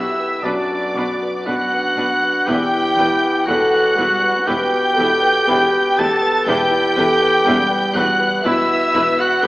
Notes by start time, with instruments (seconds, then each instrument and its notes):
Already playing: grand piano B1 B3 D4 B4, clarinet E4, french horn section G4, violin section E5 E6, flute section E5, oboe E5
0.19 grand piano B4
0.42 double bass section B1, grand piano F#2, cello section B2, clarinet D4, viola section D4 B4, french horn section F#4, oboe D5, violin section D5 D6, flute section D5
0.71 grand piano B4
0.95 double bass section B1, cello section B2, grand piano B3, viola section D4 B4
1.23 grand piano B4
1.44 double bass section B1, cello section B2, grand piano B3, viola section D4 B4, french horn section D4, clarinet F#4, oboe F#5, violin section F#5 F#6, flute section F#5
1.74 grand piano B4
1.97 double bass section B1, cello section B2, grand piano B3, viola section D4 B4
2.23 grand piano B4
2.46 double bass section E1, cello section E2, grand piano E2, viola section E4 B4, french horn section E4, clarinet G4, oboe G5, violin section G5 G6, flute section G5
2.74 grand piano B4
2.97 double bass section E1, cello section E2, grand piano B3, viola section E4 B4
3.23 grand piano B4
3.46 double bass section E1, cello section E2, grand piano B3, viola section E4 B4, clarinet F#4, french horn section A4, oboe F#5, violin section F#5 F#6, flute section F#5
3.74 grand piano B4
3.97 double bass section E1, cello section E2, french horn section G3, grand piano B3, viola section E4 B4
4.23 grand piano B4
4.46 double bass section E1, cello section E2, grand piano B2, viola section E4 B4, clarinet G4, french horn section B4, violin section G5 G6, oboe G5, flute section G5
4.71 grand piano B4
4.95 cello section E2, grand piano B3, viola section E4 B4, french horn section A4
4.99 double bass section E1
5.21 grand piano B4
5.46 cello section E2, grand piano B3, viola section E4 B4, french horn section G4
5.50 double bass section E1
5.73 grand piano B4
5.97 double bass section E1, cello section E2, grand piano B3, viola section E4 B4, clarinet A4, violin section A5 A6, flute section A5, oboe A5
6.22 grand piano B4
6.46 double bass section E1, grand piano E2, cello section E2, viola section E4 B4, clarinet G4, french horn section B4, violin section G5 G6, flute section G5, oboe G5
6.71 grand piano E4
6.95 double bass section E1, cello section E2, grand piano B3, viola section E4 B4, french horn section A4
7.21 grand piano B4
7.45 double bass section E1, cello section E2, french horn section G3, grand piano B3, viola section E4 B4
7.70 grand piano B4
7.95 double bass section E1, cello section E2, grand piano B3, viola section E4 B4, clarinet F#4, violin section F#5 F#6, flute section F#5, oboe F#5
8.19 grand piano B4
8.43 double bass section E1, cello section E2, grand piano B2, viola section E4 B4, clarinet E4, french horn section B4, flute section E5, violin section E5, oboe E5
8.47 violin section E6
8.69 grand piano B4
8.94 double bass section E1, cello section E2, grand piano B3, viola section E4 B4
9.18 clarinet F#4, grand piano B4, flute section F#5, violin section F#5 F#6, oboe F#5
9.42 cello section E2, grand piano B3, viola section E4, french horn section A4, flute section G5, violin section G5